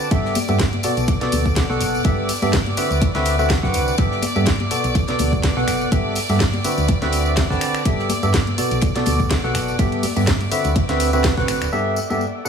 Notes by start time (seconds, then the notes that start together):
Already playing: D5 D6
0.11 G1 G2 B3 G4 A4 E5, kick, closed hi-hat, ride, tambourine
0.25 snare
0.35 open hi-hat, ride, tambourine, high conga
0.48 G2 B3 G4 A4 E5, closed hi-hat, tambourine, high conga
0.59 kick, snare, closed hi-hat, ride, tambourine
0.73 closed hi-hat, high conga
0.83 B2 B3 F#4 A4 D5, open hi-hat, ride, tambourine
0.97 B1, closed hi-hat, ride, tambourine
1.08 kick, closed hi-hat, ride, tambourine
1.21 B2 B3 F#4 A4 D5, snare, closed hi-hat, ride
1.32 D2, open hi-hat, ride, tambourine, high conga
1.45 kick, tambourine
1.56 kick, snare, closed hi-hat, ride, tambourine
1.70 B1 B2 B3 F#4 A4 F#5, snare
1.81 F#1, open hi-hat, ride, tambourine
1.95 tambourine
2.04 G1 G2 B3 G4 A4 E5, kick, closed hi-hat, ride, tambourine
2.29 open hi-hat, tambourine
2.42 G2 B3 G4 A4 E5, closed hi-hat, ride, tambourine, high conga
2.53 kick, snare, closed hi-hat, ride, tambourine
2.66 closed hi-hat, high conga
2.77 D3 C4 F#4 B4 E5, open hi-hat, ride, tambourine
2.91 D2, closed hi-hat, tambourine
3.02 kick, closed hi-hat, ride, tambourine
3.15 D2 D3 C4 F#4 B4 E5, snare, closed hi-hat
3.25 open hi-hat, ride, tambourine
3.39 D3 C4 F#4 B4 E5, tambourine
3.50 kick, snare, closed hi-hat, ride, tambourine
3.63 F#2 D3 C4 F#4 B4 F#5, kick, snare
3.74 C2, open hi-hat, ride, tambourine
3.88 tambourine
3.98 G1 G2 B3 G4 A4 E5, kick, closed hi-hat, ride, tambourine
4.11 snare
4.22 open hi-hat, ride, tambourine, high conga
4.36 G2 B3 G4 A4 E5, closed hi-hat, tambourine, high conga
4.46 kick, snare, closed hi-hat, ride, tambourine
4.60 closed hi-hat, high conga
4.71 B2 B3 F#4 A4 D5, open hi-hat, ride, tambourine
4.84 B1, closed hi-hat, ride, tambourine
4.95 kick, closed hi-hat, ride, tambourine
5.08 B2 B3 F#4 A4 D5, snare, closed hi-hat, ride
5.19 D2, open hi-hat, ride, tambourine, high conga
5.33 kick, tambourine
5.43 kick, snare, closed hi-hat, ride, tambourine
5.56 B1 B2 B3 F#4 A4 F#5, snare
5.68 F#1, finger snap, open hi-hat, ride, tambourine
5.81 tambourine
5.92 G1 G2 B3 G4 A4 E5, kick, closed hi-hat, ride, tambourine
6.15 open hi-hat, tambourine
6.29 G2 B3 G4 A4 E5, closed hi-hat, ride, tambourine, high conga
6.40 kick, snare, closed hi-hat, ride, tambourine
6.53 closed hi-hat, high conga
6.64 D3 C4 F#4 B4 E5, open hi-hat, ride, tambourine
6.78 D2, closed hi-hat, tambourine
6.88 kick, closed hi-hat, ride, tambourine
7.02 D2 D3 C4 F#4 B4 E5, snare, closed hi-hat
7.12 open hi-hat, ride, tambourine
7.26 tambourine
7.36 kick, snare, closed hi-hat, ride, tambourine
7.50 D3 C4 F#4 B4 A5, kick, snare
7.61 finger snap, open hi-hat, ride, tambourine
7.75 finger snap, tambourine
7.85 G1 G2 B3 G4 A4 E5, kick, closed hi-hat, ride, tambourine
7.99 snare
8.09 open hi-hat, ride, tambourine, high conga
8.23 G2 B3 G4 A4 E5, closed hi-hat, tambourine, high conga
8.34 kick, snare, closed hi-hat, ride, tambourine
8.47 closed hi-hat, high conga
8.58 B2 B3 F#4 A4 D5, open hi-hat, ride, tambourine
8.71 B1, closed hi-hat, ride, tambourine
8.81 kick, closed hi-hat, ride, tambourine
8.95 B2 B3 F#4 A4 D5, snare, closed hi-hat, ride
9.06 D2, open hi-hat, ride, tambourine, high conga
9.20 kick, tambourine
9.31 kick, snare, closed hi-hat, ride, tambourine
9.43 B1 B2 B3 F#4 A4 F#5, snare
9.55 F#1, finger snap, open hi-hat, ride, tambourine
9.68 tambourine
9.79 G1 G2 B3 G4 A4 E5, kick, closed hi-hat, ride, tambourine
9.92 closed hi-hat
10.03 open hi-hat, tambourine, high conga
10.16 G2 B3 G4 A4 E5, closed hi-hat, ride, tambourine, high conga
10.27 kick, snare, closed hi-hat, ride
10.41 closed hi-hat, high conga
10.51 D3 C4 F#4 B4 E5, open hi-hat, ride, tambourine
10.64 D2, closed hi-hat, tambourine
10.76 kick, closed hi-hat, ride, tambourine
10.89 D2 D3 C4 F#4 B4 E5, snare, closed hi-hat
11.00 open hi-hat, ride, tambourine
11.13 D3 C4 F#4 B4 E5, closed hi-hat, tambourine
11.24 kick, snare, closed hi-hat, ride
11.37 C2 D3 C4 F#4 B4 F#5, kick, snare, closed hi-hat
11.48 A1, finger snap, open hi-hat, ride, tambourine
11.62 D1, finger snap, closed hi-hat, tambourine
11.72 G2 B3 G4 A4 D5 E5 D6, tambourine
11.96 tambourine
12.10 G2 B3 G4 A4 E5, tambourine, high conga
12.21 tambourine
12.45 B2 D4 A4 B4 F#5, tambourine